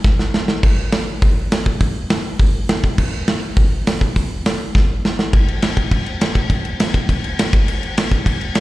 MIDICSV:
0, 0, Header, 1, 2, 480
1, 0, Start_track
1, 0, Tempo, 293399
1, 1047, Time_signature, 4, 2, 24, 8
1, 14071, End_track
2, 0, Start_track
2, 0, Title_t, "Drums"
2, 73, Note_on_c, 9, 36, 116
2, 77, Note_on_c, 9, 38, 69
2, 236, Note_off_c, 9, 36, 0
2, 240, Note_off_c, 9, 38, 0
2, 317, Note_on_c, 9, 38, 75
2, 481, Note_off_c, 9, 38, 0
2, 560, Note_on_c, 9, 38, 108
2, 724, Note_off_c, 9, 38, 0
2, 789, Note_on_c, 9, 38, 99
2, 952, Note_off_c, 9, 38, 0
2, 1035, Note_on_c, 9, 36, 107
2, 1037, Note_on_c, 9, 49, 103
2, 1198, Note_off_c, 9, 36, 0
2, 1200, Note_off_c, 9, 49, 0
2, 1505, Note_on_c, 9, 46, 63
2, 1513, Note_on_c, 9, 38, 119
2, 1668, Note_off_c, 9, 46, 0
2, 1676, Note_off_c, 9, 38, 0
2, 1998, Note_on_c, 9, 36, 113
2, 2001, Note_on_c, 9, 46, 60
2, 2162, Note_off_c, 9, 36, 0
2, 2165, Note_off_c, 9, 46, 0
2, 2480, Note_on_c, 9, 46, 69
2, 2488, Note_on_c, 9, 38, 124
2, 2643, Note_off_c, 9, 46, 0
2, 2651, Note_off_c, 9, 38, 0
2, 2718, Note_on_c, 9, 36, 86
2, 2881, Note_off_c, 9, 36, 0
2, 2954, Note_on_c, 9, 46, 64
2, 2957, Note_on_c, 9, 36, 104
2, 3118, Note_off_c, 9, 46, 0
2, 3120, Note_off_c, 9, 36, 0
2, 3433, Note_on_c, 9, 46, 79
2, 3441, Note_on_c, 9, 38, 123
2, 3596, Note_off_c, 9, 46, 0
2, 3604, Note_off_c, 9, 38, 0
2, 3912, Note_on_c, 9, 46, 75
2, 3918, Note_on_c, 9, 36, 111
2, 4076, Note_off_c, 9, 46, 0
2, 4082, Note_off_c, 9, 36, 0
2, 4397, Note_on_c, 9, 46, 73
2, 4405, Note_on_c, 9, 38, 127
2, 4561, Note_off_c, 9, 46, 0
2, 4569, Note_off_c, 9, 38, 0
2, 4641, Note_on_c, 9, 36, 87
2, 4805, Note_off_c, 9, 36, 0
2, 4876, Note_on_c, 9, 49, 110
2, 4880, Note_on_c, 9, 36, 104
2, 5040, Note_off_c, 9, 49, 0
2, 5044, Note_off_c, 9, 36, 0
2, 5357, Note_on_c, 9, 46, 72
2, 5365, Note_on_c, 9, 38, 121
2, 5520, Note_off_c, 9, 46, 0
2, 5529, Note_off_c, 9, 38, 0
2, 5836, Note_on_c, 9, 46, 60
2, 5837, Note_on_c, 9, 36, 113
2, 5999, Note_off_c, 9, 46, 0
2, 6001, Note_off_c, 9, 36, 0
2, 6328, Note_on_c, 9, 46, 67
2, 6336, Note_on_c, 9, 38, 125
2, 6491, Note_off_c, 9, 46, 0
2, 6500, Note_off_c, 9, 38, 0
2, 6564, Note_on_c, 9, 36, 87
2, 6728, Note_off_c, 9, 36, 0
2, 6808, Note_on_c, 9, 36, 101
2, 6811, Note_on_c, 9, 46, 70
2, 6972, Note_off_c, 9, 36, 0
2, 6975, Note_off_c, 9, 46, 0
2, 7290, Note_on_c, 9, 46, 67
2, 7298, Note_on_c, 9, 38, 116
2, 7453, Note_off_c, 9, 46, 0
2, 7462, Note_off_c, 9, 38, 0
2, 7770, Note_on_c, 9, 36, 106
2, 7785, Note_on_c, 9, 38, 68
2, 7934, Note_off_c, 9, 36, 0
2, 7948, Note_off_c, 9, 38, 0
2, 8263, Note_on_c, 9, 38, 104
2, 8426, Note_off_c, 9, 38, 0
2, 8492, Note_on_c, 9, 38, 98
2, 8656, Note_off_c, 9, 38, 0
2, 8724, Note_on_c, 9, 57, 90
2, 8725, Note_on_c, 9, 36, 112
2, 8888, Note_off_c, 9, 57, 0
2, 8889, Note_off_c, 9, 36, 0
2, 8972, Note_on_c, 9, 57, 65
2, 9136, Note_off_c, 9, 57, 0
2, 9198, Note_on_c, 9, 57, 90
2, 9207, Note_on_c, 9, 38, 115
2, 9362, Note_off_c, 9, 57, 0
2, 9370, Note_off_c, 9, 38, 0
2, 9439, Note_on_c, 9, 36, 83
2, 9439, Note_on_c, 9, 57, 55
2, 9602, Note_off_c, 9, 36, 0
2, 9603, Note_off_c, 9, 57, 0
2, 9676, Note_on_c, 9, 36, 96
2, 9676, Note_on_c, 9, 57, 86
2, 9839, Note_off_c, 9, 36, 0
2, 9840, Note_off_c, 9, 57, 0
2, 9919, Note_on_c, 9, 57, 62
2, 10082, Note_off_c, 9, 57, 0
2, 10161, Note_on_c, 9, 57, 95
2, 10169, Note_on_c, 9, 38, 127
2, 10325, Note_off_c, 9, 57, 0
2, 10333, Note_off_c, 9, 38, 0
2, 10393, Note_on_c, 9, 36, 86
2, 10394, Note_on_c, 9, 57, 64
2, 10557, Note_off_c, 9, 36, 0
2, 10557, Note_off_c, 9, 57, 0
2, 10631, Note_on_c, 9, 57, 81
2, 10632, Note_on_c, 9, 36, 98
2, 10795, Note_off_c, 9, 36, 0
2, 10795, Note_off_c, 9, 57, 0
2, 10878, Note_on_c, 9, 57, 64
2, 11042, Note_off_c, 9, 57, 0
2, 11120, Note_on_c, 9, 57, 94
2, 11129, Note_on_c, 9, 38, 121
2, 11284, Note_off_c, 9, 57, 0
2, 11292, Note_off_c, 9, 38, 0
2, 11357, Note_on_c, 9, 36, 86
2, 11364, Note_on_c, 9, 57, 63
2, 11521, Note_off_c, 9, 36, 0
2, 11528, Note_off_c, 9, 57, 0
2, 11599, Note_on_c, 9, 36, 99
2, 11602, Note_on_c, 9, 57, 80
2, 11763, Note_off_c, 9, 36, 0
2, 11766, Note_off_c, 9, 57, 0
2, 11845, Note_on_c, 9, 57, 76
2, 12008, Note_off_c, 9, 57, 0
2, 12089, Note_on_c, 9, 57, 100
2, 12097, Note_on_c, 9, 38, 127
2, 12253, Note_off_c, 9, 57, 0
2, 12261, Note_off_c, 9, 38, 0
2, 12322, Note_on_c, 9, 36, 110
2, 12334, Note_on_c, 9, 57, 69
2, 12485, Note_off_c, 9, 36, 0
2, 12497, Note_off_c, 9, 57, 0
2, 12566, Note_on_c, 9, 57, 93
2, 12729, Note_off_c, 9, 57, 0
2, 12807, Note_on_c, 9, 57, 72
2, 12970, Note_off_c, 9, 57, 0
2, 13046, Note_on_c, 9, 57, 92
2, 13054, Note_on_c, 9, 38, 127
2, 13209, Note_off_c, 9, 57, 0
2, 13218, Note_off_c, 9, 38, 0
2, 13276, Note_on_c, 9, 36, 89
2, 13280, Note_on_c, 9, 57, 58
2, 13439, Note_off_c, 9, 36, 0
2, 13443, Note_off_c, 9, 57, 0
2, 13514, Note_on_c, 9, 36, 98
2, 13523, Note_on_c, 9, 57, 85
2, 13678, Note_off_c, 9, 36, 0
2, 13686, Note_off_c, 9, 57, 0
2, 13761, Note_on_c, 9, 57, 66
2, 13924, Note_off_c, 9, 57, 0
2, 13988, Note_on_c, 9, 57, 96
2, 13996, Note_on_c, 9, 38, 121
2, 14071, Note_off_c, 9, 38, 0
2, 14071, Note_off_c, 9, 57, 0
2, 14071, End_track
0, 0, End_of_file